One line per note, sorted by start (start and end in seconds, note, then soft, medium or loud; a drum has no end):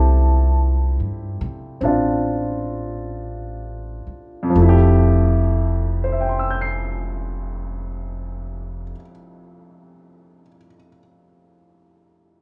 0.00 0.97 C2 medium
0.00 4.52 A3 soft
0.00 1.79 C4 soft
0.00 4.56 E4 soft
0.00 4.57 G4 medium
0.00 0.60 A5 medium
1.00 1.38 G2 medium
1.41 1.79 C3 medium
1.81 4.02 A1 medium
1.81 4.54 C4 soft
1.81 4.55 D4 soft
1.85 4.56 F4 soft
4.07 muted upright bass stroke soft
4.43 8.83 F2 medium
4.50 8.90 F3 medium
4.55 8.91 F1 medium
4.55 8.96 A3 medium
4.62 9.02 E4 medium
4.69 9.09 G4 medium
6.04 10.40 C5 soft
6.12 10.48 E5 soft
6.21 10.57 G5 soft
6.29 10.65 C6 soft
6.39 10.75 E6 soft
6.51 10.87 G6 soft
6.61 10.97 C7 soft